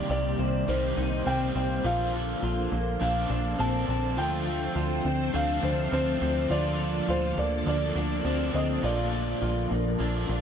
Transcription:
Already playing: C3 D#3 G3 A#3 C4 D#4 G4 C5
0.10 C2 G4 D5
0.39 C2 C4
0.68 C2 G3 A#3 D#4 G4 C5 F5
0.97 C2 D#4
1.25 C2 G3 A#3 C4 D#4 G5
1.29 G4
1.55 C2 C4
1.84 A#1 A#2 F3 A#3 D4 F4 A4 F5
2.13 A#3 D4 A4
2.42 A#1 F4 D6
2.72 A#1 A#3
3.00 A#1 F3 A#3 D4 A4 F5
3.30 A#1 D4
3.58 A#1 F3 A#3 C4 D4 A4 A5
3.88 A#1 C4
4.17 D2 D3 F3 A3 C4 F4 A4 C5 G5
4.46 A3 C4 A4
4.75 D2 F4 F6
5.04 D2 C4
5.33 D2 F3 A3 C4 D4 F5
5.37 A4
5.62 D2 D4 C5
5.91 D2 F3 A3 C4 C5
5.95 A4
6.21 D2 C4
6.49 D2 D3 F3 A#3 F4 D5
6.53 D4 A4
7.08 D2 F4 C5 D6
7.28 F6
7.37 D2 A#3 D5
7.48 G6
7.66 D2 F3 A#3 D4 A4 D5
7.96 D2 D4
8.24 D2 F3 A#3 C4 D4 A4
8.54 D2 C4 D#5
8.81 A#1 A#2 F3 A#3 F4 D5
8.86 D4 A4
9.42 A#1 F4
9.71 A#1 A#3
9.99 A#1 F3 A#3 D4
10.03 A4
10.29 A#1 D4

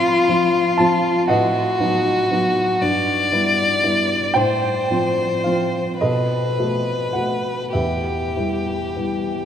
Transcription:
Already playing: A2 F3 C4 F4 F5 A5 B5 C6
0.28 F3 C4 F4
0.78 F3 C4 F4 A5
1.28 A2 F#4 B4 D#5 F#5
1.79 F#3 B3 D#4
2.31 F#3 B3 D#4
2.81 G2 D5
3.32 G3 B3 E4
3.83 G3 B3 E4
4.34 A2 C5 G5
4.91 F3 C4 F4
5.44 F3 C4 F4 F5
6.00 B2 A4 B4 D#5
6.59 A3 B3 F#4
7.13 A3 B3 F#4 F#5
7.73 E2 G4 B4 E5
8.36 G3 B3 E4
8.96 G3 B3 E4

